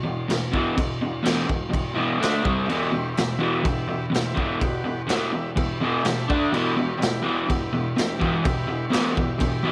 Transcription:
0.04 0.26 E2 medium
0.04 0.26 B2 medium
0.28 0.50 E2 medium
0.28 0.50 B2 medium
0.28 snare loud
0.28 crash medium
0.52 0.75 E2 medium
0.52 0.75 B2 loud
0.52 0.75 E3 loud
0.52 kick medium
0.77 0.98 E2 medium
0.77 0.98 B2 loud
0.77 kick loud
0.77 crash medium
1.01 1.22 E2 medium
1.01 1.22 B2 medium
1.23 1.46 E2 medium
1.23 1.46 B2 loud
1.23 1.47 E3 loud
1.23 snare loud
1.23 crash medium
1.47 1.69 E2 medium
1.47 1.69 B2 medium
1.47 kick medium
1.70 1.93 E2 medium
1.70 1.93 B2 medium
1.70 kick medium
1.74 crash medium
1.95 2.18 E2 loud
1.95 2.19 B2 loud
1.95 2.19 E3 loud
2.20 2.43 D3 medium
2.20 2.43 A3 medium
2.20 2.44 D4 medium
2.20 snare loud
2.20 crash medium
2.44 2.67 C3 medium
2.44 2.67 G3 medium
2.44 2.67 C4 loud
2.44 kick loud
2.65 2.91 E2 medium
2.65 3.09 G4 loud
2.65 3.10 B4 loud
2.65 3.09 E5 loud
2.69 2.91 B2 loud
2.69 2.92 E3 medium
2.69 crash medium
2.92 3.14 E2 medium
2.92 3.14 B2 medium
3.12 3.56 G4 medium
3.12 3.58 B4 medium
3.12 3.57 E5 medium
3.17 3.38 E2 medium
3.17 3.39 B2 medium
3.17 snare loud
3.17 crash medium
3.39 3.62 E2 loud
3.39 3.62 B2 loud
3.39 3.63 E3 loud
3.63 3.86 E2 medium
3.63 3.86 B2 loud
3.63 4.06 G4 medium
3.63 4.07 B4 medium
3.63 4.06 E5 loud
3.63 kick loud
3.63 crash medium
3.88 4.09 E2 medium
3.88 4.10 B2 medium
4.10 4.33 E2 medium
4.10 4.34 B2 medium
4.10 4.55 B4 medium
4.14 4.56 G4 medium
4.14 4.56 E5 medium
4.14 snare loud
4.14 crash medium
4.34 4.58 E2 loud
4.34 4.59 B2 medium
4.34 4.59 E3 loud
4.34 kick medium
4.59 4.82 E2 medium
4.59 4.82 B2 medium
4.59 5.02 G4 loud
4.59 5.03 B4 loud
4.59 5.02 F#5 loud
4.59 kick loud
4.59 crash medium
4.84 5.06 E2 medium
4.84 5.06 B2 medium
5.07 5.30 E2 loud
5.07 5.31 B2 loud
5.07 5.32 E3 loud
5.07 5.51 G4 medium
5.07 5.51 B4 medium
5.07 5.52 E5 medium
5.07 snare loud
5.07 crash medium
5.31 5.54 E2 medium
5.31 5.54 B2 medium
5.56 5.78 E2 medium
5.56 5.78 B2 medium
5.56 5.98 G4 medium
5.56 5.99 B4 medium
5.56 5.81 E5 medium
5.56 kick loud
5.56 crash medium
5.81 6.03 E2 loud
5.81 6.03 B2 loud
5.81 6.04 E3 loud
5.81 5.93 E5 medium
5.89 6.02 G5 medium
5.98 6.26 G4 medium
5.98 6.26 B4 medium
5.98 6.26 E5 loud
5.98 6.46 A5 medium
6.04 6.27 E2 medium
6.04 6.26 B2 medium
6.04 snare loud
6.04 crash medium
6.27 6.51 D3 medium
6.27 6.52 A3 medium
6.27 6.49 D4 medium
6.27 6.52 D4 loud
6.27 6.49 A4 medium
6.27 6.49 D5 medium
6.27 kick loud
6.51 6.75 E2 medium
6.51 6.75 B2 medium
6.51 6.76 E3 medium
6.51 6.94 E4 loud
6.51 6.94 G4 loud
6.51 6.95 B4 loud
6.51 crash medium
6.76 6.97 E2 medium
6.76 6.97 B2 medium
6.97 7.21 E2 medium
6.97 7.21 B2 loud
6.97 7.41 E4 medium
6.97 7.41 G4 medium
6.97 7.42 B4 loud
7.02 snare loud
7.02 crash medium
7.22 7.46 E2 medium
7.22 7.46 B2 loud
7.22 7.47 E3 loud
7.45 7.70 E2 medium
7.45 7.70 B2 medium
7.45 7.89 E4 medium
7.45 7.89 G4 medium
7.45 7.89 B4 medium
7.50 kick loud
7.50 crash medium
7.73 7.94 E2 medium
7.73 7.94 B2 medium
7.95 8.18 E2 medium
7.95 8.18 B2 medium
7.95 8.38 E4 medium
7.95 8.38 G4 medium
7.95 8.38 B4 medium
7.95 crash medium
7.99 snare loud
8.19 8.42 E2 loud
8.19 8.43 B2 loud
8.19 8.43 E3 loud
8.19 kick medium
8.43 8.66 E2 medium
8.43 8.66 B2 medium
8.43 8.86 E4 loud
8.43 8.86 G4 loud
8.43 8.86 B4 loud
8.43 kick loud
8.43 crash medium
8.67 8.89 E2 medium
8.67 8.89 B2 medium
8.89 9.14 E2 loud
8.89 9.14 B2 loud
8.89 9.15 E3 loud
8.89 9.33 E4 medium
8.89 9.33 G4 medium
8.89 9.33 B4 loud
8.89 crash medium
8.94 snare loud
9.16 9.38 E2 medium
9.16 9.37 B2 medium
9.16 kick loud
9.35 9.61 E2 medium
9.35 9.72 E4 loud
9.35 9.72 G4 medium
9.35 9.72 B4 medium
9.40 9.62 B2 medium
9.40 kick loud
9.40 crash medium
9.64 9.72 E2 loud
9.64 9.72 B2 loud
9.64 9.72 E3 loud

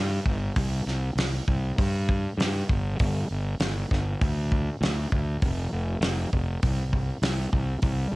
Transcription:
0.00 0.18 G2 medium
0.26 0.49 G1 medium
0.26 kick medium
0.56 0.80 C2 loud
0.56 kick loud
0.56 open hi-hat medium
0.86 1.10 C2 medium
0.86 snare soft
1.15 1.39 C2 medium
1.15 snare loud
1.15 open hi-hat medium
1.47 1.71 C2 medium
1.47 kick medium
1.78 2.25 G2 medium
1.78 kick loud
1.78 open hi-hat medium
2.09 kick medium
2.37 2.62 G2 loud
2.37 snare loud
2.37 open hi-hat medium
2.69 2.99 G1 medium
2.69 kick medium
2.99 3.23 G1 loud
2.99 kick loud
2.99 open hi-hat medium
3.30 3.54 G1 medium
3.59 3.83 G1 medium
3.59 snare loud
3.59 open hi-hat medium
3.91 4.14 G1 medium
3.91 kick medium
3.91 snare soft
4.21 4.68 D2 medium
4.21 kick loud
4.21 open hi-hat medium
4.52 kick medium
4.81 5.04 D2 loud
4.81 snare loud
4.81 open hi-hat medium
5.12 5.36 D2 medium
5.12 kick medium
5.42 5.65 F1 loud
5.42 kick loud
5.42 open hi-hat medium
5.72 5.96 F1 medium
6.00 6.25 F1 medium
6.00 snare loud
6.00 open hi-hat medium
6.32 6.56 F1 medium
6.32 kick medium
6.63 7.10 C2 medium
6.63 kick loud
6.63 open hi-hat medium
6.93 kick medium
7.22 7.46 C2 medium
7.22 snare loud
7.22 open hi-hat medium
7.52 7.76 C2 medium
7.52 kick medium
7.82 8.06 C2 medium
7.82 kick loud
7.82 open hi-hat medium
8.12 8.16 C2 medium

